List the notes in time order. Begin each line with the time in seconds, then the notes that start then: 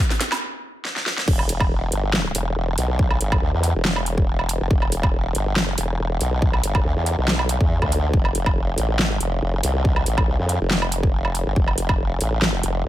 0.10 snare
0.21 snare, closed hi-hat
0.32 snare, low woodblock
0.85 snare
0.96 snare
1.06 snare
1.18 snare
1.28 E1, kick, crash
1.39 low woodblock
1.49 closed hi-hat
1.60 kick, low woodblock
1.92 G1, closed hi-hat
2.13 snare, clap
2.35 E1, closed hi-hat
2.56 E1
2.78 B1, closed hi-hat
2.99 kick
3.11 low woodblock
3.21 G1, closed hi-hat
3.32 kick, low woodblock
3.42 D2
3.53 E2
3.63 closed hi-hat
3.75 E1
3.85 snare, clap
3.96 low woodblock
4.06 closed hi-hat
4.18 kick
4.39 low woodblock
4.49 closed hi-hat
4.61 F1
4.71 E1, kick
4.82 low woodblock
4.92 closed hi-hat
5.03 kick, low woodblock
5.35 G1, closed hi-hat
5.56 snare, clap
5.78 E1, closed hi-hat
5.99 E1
6.21 B1, closed hi-hat
6.42 kick
6.53 low woodblock
6.63 G1, closed hi-hat
6.75 kick, low woodblock
6.85 D2
6.96 E2
7.06 closed hi-hat
7.18 B1
7.28 snare, clap
7.39 low woodblock
7.49 closed hi-hat
7.61 E2, kick
7.82 D2, kick, low woodblock
7.92 closed hi-hat
8.13 F1, kick
8.25 low woodblock
8.35 closed hi-hat
8.46 kick, low woodblock
8.78 A1, closed hi-hat
8.99 snare, clap
9.21 F1, closed hi-hat
9.42 F1
9.63 C2, closed hi-hat
9.85 kick
9.96 low woodblock
10.06 A1, closed hi-hat
10.18 kick, low woodblock
10.28 C2
10.39 F2
10.49 closed hi-hat
10.61 F1
10.71 snare, clap
10.82 low woodblock
10.92 closed hi-hat
11.03 kick
11.25 low woodblock
11.35 closed hi-hat
11.46 G1
11.56 F1, kick
11.68 low woodblock
11.78 closed hi-hat
11.89 kick, low woodblock
12.21 A1, closed hi-hat
12.42 snare, clap
12.63 F1, closed hi-hat
12.85 F1